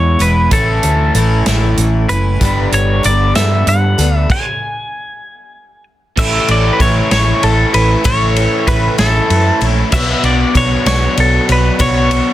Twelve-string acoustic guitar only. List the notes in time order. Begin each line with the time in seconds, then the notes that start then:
Already playing: E2 B2 E3 G#3 B3 E4
0.19 E3 G#3 B3 E4
0.51 A2 E3 A3 C#4 E4
1.15 E3 A3 C#4 E4
1.47 A2 E3 A3 C#4 E4
2.09 A3 C#4 E4
2.41 G3 B3 D4 A4
3.03 G3 B3 D4 A4
3.35 G3 B3 D4 A4
3.98 B3 D4 A4
6.18 A2 A3 C#4 E4 A4
6.80 A3 C#4 E4 A4
7.12 A2 A3 C#4 E4 A4
7.74 C#4 E4 A4
8.04 A2 A3 C#4 E4 A4
8.67 A3 C#4 E4 A4
8.98 A2 A3 C#4 E4 A4
9.61 C#4 E4 A4
9.93 B2 F#3 B3 D4 F#4
10.55 B3 D4 F#4 C#5
10.86 B2 F#3 B3 D4 F#4 C#5
11.49 B3 D4 F#4 C#5
11.79 B2 F#3 B3 D4 F#4 C#5